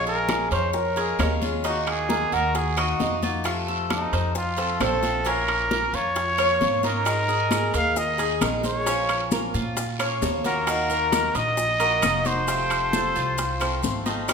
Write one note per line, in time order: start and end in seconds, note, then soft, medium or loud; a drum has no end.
0.00 0.45 A#1 medium
0.00 0.72 F3 medium
0.00 0.72 G#3 medium
0.00 0.72 C#4 medium
0.00 0.73 F4 medium
0.06 0.50 G#4 medium
0.06 0.49 A#4 medium
0.06 high bongo soft
0.06 high conga soft
0.29 high bongo medium
0.29 high conga medium
0.29 high timbale medium
0.29 short guiro medium
0.29 claves medium
0.51 1.15 F2 medium
0.51 0.73 C5 medium
0.51 0.96 C#5 medium
0.51 high conga soft
0.51 high timbale medium
0.51 short guiro medium
0.73 1.38 A#4 medium
0.73 muted steel-string acoustic guitar stroke medium
0.73 high bongo medium
0.73 high conga soft
0.73 long guiro medium
0.96 1.19 G#3 medium
0.96 1.18 C#4 medium
0.96 1.18 F4 medium
0.96 1.19 G#4 medium
0.96 high bongo soft
0.96 high conga soft
0.96 high timbale medium
1.19 2.26 D#2 medium
1.19 1.41 F3 soft
1.19 1.41 G#3 soft
1.19 1.41 C#4 medium
1.19 1.40 F4 medium
1.19 1.63 C#5 medium
1.19 high bongo soft
1.19 low bongo medium
1.19 high conga medium
1.19 high timbale medium
1.19 low timbale medium
1.19 short guiro medium
1.19 claves medium
1.42 1.64 G#3 soft
1.42 1.64 C#4 medium
1.42 1.63 F4 medium
1.42 high bongo soft
1.42 high conga medium
1.42 short guiro medium
1.64 2.54 D#3 medium
1.64 2.54 A#3 medium
1.64 2.08 D#4 medium
1.64 2.54 D#4 medium
1.64 1.90 F#4 medium
1.64 2.54 F#4 medium
1.64 high bongo medium
1.64 high conga soft
1.64 high timbale medium
1.64 long guiro medium
1.87 2.35 G#4 medium
1.87 high bongo soft
1.87 high conga soft
1.87 high timbale medium
1.87 claves medium
2.09 2.32 A#4 medium
2.09 high bongo medium
2.09 high conga medium
2.09 short guiro medium
2.32 2.96 D#2 medium
2.32 2.76 F#4 medium
2.32 2.58 A#4 medium
2.32 high conga soft
2.32 short guiro medium
2.55 2.78 G#4 medium
2.55 muted steel-string acoustic guitar stroke medium
2.55 high bongo medium
2.55 high conga soft
2.55 high timbale medium
2.55 long guiro medium
2.77 2.99 A#3 medium
2.77 2.99 D#4 medium
2.77 2.99 F#4 medium
2.77 3.20 F#4 medium
2.77 3.21 D#5 medium
2.77 high bongo soft
2.77 high conga soft
2.77 high timbale medium
2.77 claves medium
2.99 4.06 F2 medium
2.99 3.21 D#3 soft
2.99 3.22 A#3 soft
2.99 3.22 D#4 medium
2.99 3.21 F#4 medium
2.99 high bongo soft
2.99 low bongo medium
2.99 high conga medium
2.99 short guiro medium
3.22 3.45 A#3 medium
3.22 3.45 D#4 medium
3.22 3.67 F4 medium
3.22 3.44 F#4 medium
3.22 high bongo soft
3.22 high conga medium
3.22 short guiro medium
3.44 4.34 C3 medium
3.44 4.35 F3 medium
3.44 4.34 A3 medium
3.44 4.34 C4 medium
3.44 4.35 F4 medium
3.44 high bongo medium
3.44 high conga soft
3.44 high timbale medium
3.44 long guiro medium
3.44 claves medium
3.68 4.12 A4 medium
3.68 high bongo soft
3.68 high conga soft
3.90 4.33 D#4 medium
3.90 high bongo medium
3.90 high conga medium
3.90 high timbale medium
3.90 short guiro medium
3.90 claves medium
4.12 4.76 F2 medium
4.12 4.57 C5 medium
4.12 high conga soft
4.12 high timbale medium
4.12 short guiro medium
4.35 4.84 F4 medium
4.35 muted steel-string acoustic guitar stroke medium
4.35 high bongo medium
4.35 high conga soft
4.35 long guiro medium
4.57 4.79 F3 medium
4.57 4.80 A3 medium
4.57 4.80 C4 medium
4.57 4.79 F4 medium
4.57 4.80 A4 medium
4.57 high bongo soft
4.57 high conga soft
4.57 high timbale medium
4.80 5.87 A#1 medium
4.80 5.02 F3 soft
4.80 5.02 A3 soft
4.80 5.02 C4 soft
4.80 5.01 F4 soft
4.80 5.29 A4 medium
4.80 5.24 C5 medium
4.80 high bongo soft
4.80 low bongo medium
4.80 high conga medium
4.80 high timbale medium
4.80 low timbale medium
4.80 short guiro medium
4.80 claves medium
5.02 5.23 F3 medium
5.02 5.25 A3 medium
5.02 5.25 C4 medium
5.02 5.24 F4 medium
5.02 high bongo soft
5.02 high conga medium
5.02 short guiro medium
5.25 6.14 F3 medium
5.25 6.15 A#3 medium
5.25 5.70 C#4 medium
5.25 6.15 C#4 medium
5.25 6.15 F4 medium
5.25 5.97 A#4 medium
5.25 high bongo medium
5.25 high conga soft
5.25 high timbale medium
5.25 long guiro medium
5.48 high bongo soft
5.48 high conga soft
5.48 high timbale medium
5.48 claves medium
5.71 5.93 A#4 medium
5.71 high bongo medium
5.71 high conga medium
5.71 short guiro medium
5.93 6.57 F2 medium
5.93 6.37 F4 medium
5.93 6.85 C#5 medium
5.93 high conga soft
5.93 short guiro medium
6.16 muted steel-string acoustic guitar stroke medium
6.16 high bongo medium
6.16 high conga soft
6.16 high timbale medium
6.16 long guiro medium
6.38 6.60 A#3 medium
6.38 6.60 C#4 medium
6.38 6.60 F4 medium
6.38 6.82 C#5 medium
6.38 high bongo soft
6.38 high conga soft
6.38 high timbale medium
6.38 claves medium
6.61 7.68 G#2 medium
6.61 6.83 F3 soft
6.61 6.83 A#3 soft
6.61 6.83 C#4 medium
6.61 6.82 F4 soft
6.61 high bongo soft
6.61 low bongo medium
6.61 high conga medium
6.61 short guiro medium
6.83 7.06 A#3 medium
6.83 7.05 C#4 medium
6.83 7.28 D#4 medium
6.83 7.05 F4 medium
6.83 7.71 A#4 medium
6.83 high bongo soft
6.83 high conga medium
6.83 short guiro medium
7.05 7.95 D#3 medium
7.05 7.95 G#3 medium
7.05 7.96 D#4 medium
7.05 7.96 G#4 medium
7.05 high bongo medium
7.05 high conga soft
7.05 high timbale medium
7.05 long guiro medium
7.05 claves medium
7.05 maracas medium
7.28 7.73 G#4 medium
7.28 high bongo soft
7.28 high conga soft
7.28 maracas soft
7.51 high bongo medium
7.51 high conga medium
7.51 high timbale medium
7.51 short guiro medium
7.51 claves medium
7.51 maracas medium
7.74 8.38 D#2 medium
7.74 8.18 A#4 medium
7.74 7.99 F5 medium
7.74 high conga soft
7.74 high timbale medium
7.74 short guiro medium
7.74 maracas soft
7.96 8.38 D#5 medium
7.96 muted steel-string acoustic guitar stroke medium
7.96 high bongo medium
7.96 high conga soft
7.96 long guiro medium
7.96 maracas medium
8.18 8.40 G#3 medium
8.18 8.41 D#4 medium
8.18 8.40 G#4 medium
8.18 8.41 G#4 medium
8.18 high bongo soft
8.18 high conga soft
8.18 high timbale medium
8.18 maracas soft
8.41 9.48 A#1 medium
8.41 8.63 D#3 soft
8.41 8.63 G#3 medium
8.41 8.63 D#4 medium
8.41 8.62 G#4 medium
8.41 8.86 A#4 medium
8.41 high bongo soft
8.41 low bongo medium
8.41 high conga medium
8.41 high timbale medium
8.41 short guiro medium
8.41 claves medium
8.41 maracas medium
8.63 8.86 G#3 medium
8.63 8.86 D#4 medium
8.63 8.85 G#4 medium
8.63 9.28 C#5 loud
8.63 high bongo soft
8.63 high conga medium
8.63 short guiro medium
8.63 maracas soft
8.86 9.76 F3 medium
8.86 9.77 A#3 medium
8.86 9.31 C#4 medium
8.86 9.76 C#4 medium
8.86 9.77 F4 medium
8.86 high bongo medium
8.86 high conga soft
8.86 high timbale medium
8.86 long guiro medium
8.86 maracas medium
9.09 high bongo soft
9.09 high conga soft
9.09 high timbale medium
9.09 claves medium
9.09 maracas soft
9.31 9.54 A#4 medium
9.31 high bongo medium
9.31 high conga medium
9.31 short guiro medium
9.31 maracas medium
9.54 10.18 A#2 medium
9.54 9.98 F4 medium
9.54 high conga soft
9.54 short guiro medium
9.54 maracas soft
9.77 muted steel-string acoustic guitar stroke medium
9.77 high bongo medium
9.77 high conga soft
9.77 high timbale medium
9.77 long guiro medium
9.77 maracas medium
9.99 10.21 A#3 medium
9.99 10.22 C#4 medium
9.99 10.21 F4 medium
9.99 10.44 C#5 medium
9.99 high bongo soft
9.99 high conga soft
9.99 high timbale medium
9.99 claves medium
9.99 maracas soft
10.22 11.29 D#2 medium
10.22 10.44 F3 medium
10.22 10.44 A#3 medium
10.22 10.44 C#4 medium
10.22 10.43 F4 medium
10.22 high bongo soft
10.22 low bongo medium
10.22 high conga medium
10.22 low timbale medium
10.22 short guiro medium
10.22 maracas medium
10.44 10.67 A#3 soft
10.44 10.67 C#4 medium
10.44 10.66 F4 medium
10.44 10.89 F#4 medium
10.44 11.38 A#4 medium
10.44 high bongo soft
10.44 high conga medium
10.44 short guiro medium
10.44 maracas soft
10.67 11.56 D#3 medium
10.67 11.56 A#3 medium
10.67 11.56 D#4 medium
10.67 11.57 F#4 medium
10.67 high bongo medium
10.67 high conga soft
10.67 high timbale medium
10.67 long guiro medium
10.67 claves medium
10.67 maracas medium
10.90 11.34 A#4 medium
10.90 high bongo soft
10.90 high conga soft
10.90 maracas soft
11.12 high bongo medium
11.12 high conga medium
11.12 high timbale medium
11.12 short guiro medium
11.12 claves medium
11.12 maracas medium
11.35 11.99 A#1 medium
11.35 11.79 D#5 medium
11.35 12.28 D#5 loud
11.35 high conga soft
11.35 high timbale medium
11.35 short guiro medium
11.35 maracas soft
11.57 muted steel-string acoustic guitar stroke medium
11.57 high bongo medium
11.57 high conga soft
11.57 long guiro medium
11.57 maracas medium
11.80 12.01 A#3 medium
11.80 12.02 D#4 medium
11.80 12.02 F#4 medium
11.80 12.02 A#4 medium
11.80 high bongo soft
11.80 high conga soft
11.80 high timbale medium
11.80 maracas soft
12.02 13.09 F1 medium
12.02 12.24 D#3 soft
12.02 12.24 A#3 medium
12.02 12.24 D#4 soft
12.02 12.24 F#4 soft
12.02 12.47 D#5 medium
12.02 high bongo soft
12.02 low bongo medium
12.02 high conga medium
12.02 high timbale medium
12.02 short guiro medium
12.02 claves medium
12.02 maracas medium
12.25 12.48 A#3 medium
12.25 12.47 D#4 medium
12.25 12.47 F#4 medium
12.25 14.06 C5 medium
12.25 high bongo soft
12.25 high conga medium
12.25 short guiro medium
12.25 maracas soft
12.47 13.36 C3 medium
12.47 13.37 F3 medium
12.47 13.37 A3 medium
12.47 12.92 C4 medium
12.47 13.38 C4 medium
12.47 13.37 F4 medium
12.47 high bongo medium
12.47 high conga soft
12.47 high timbale medium
12.47 long guiro medium
12.47 maracas medium
12.70 high bongo soft
12.70 high conga soft
12.70 high timbale medium
12.70 claves medium
12.70 maracas soft
12.93 13.15 A4 medium
12.93 high bongo medium
12.93 high conga medium
12.93 short guiro medium
12.93 maracas medium
13.16 13.80 C2 medium
13.16 13.59 F4 medium
13.16 high conga soft
13.16 short guiro medium
13.16 maracas soft
13.38 muted steel-string acoustic guitar stroke medium
13.38 high bongo medium
13.38 high conga soft
13.38 high timbale medium
13.38 long guiro medium
13.38 maracas medium
13.60 13.81 F3 soft
13.60 13.82 A3 medium
13.60 13.82 C4 medium
13.60 13.82 F4 medium
13.60 14.05 C5 medium
13.60 high bongo soft
13.60 high conga soft
13.60 high timbale medium
13.60 claves medium
13.60 maracas soft
13.82 14.33 G#1 medium
13.82 14.05 F3 soft
13.82 14.05 A3 medium
13.82 14.05 C4 medium
13.82 14.04 F4 medium
13.82 high bongo soft
13.82 low bongo medium
13.82 high conga medium
13.82 short guiro medium
13.82 maracas medium
14.06 14.28 F3 medium
14.06 14.28 A3 medium
14.06 14.28 C4 medium
14.06 14.33 D#4 medium
14.06 14.27 F4 medium
14.06 high bongo soft
14.06 high conga medium
14.06 short guiro medium
14.06 maracas soft
14.28 14.33 D#3 medium
14.28 14.33 G#3 medium
14.28 14.33 C4 medium
14.28 14.33 D#4 medium
14.28 14.33 G#4 medium
14.28 high bongo medium
14.28 high conga soft
14.28 high timbale medium
14.28 claves medium
14.28 maracas medium